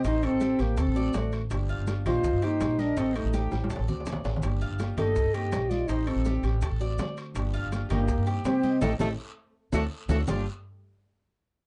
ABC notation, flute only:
X:1
M:4/4
L:1/16
Q:1/4=164
K:Gm
V:1 name="Flute"
c2 A4 G2 A4 ^F3 z | z6 c4 c4 B2 | A2 E4 z8 z2 | z6 e4 e4 d2 |
c2 A4 z8 z2 | z6 G4 z2 G4 | A2 A2 z6 ^F2 z2 F2 | d2 z12 z2 |]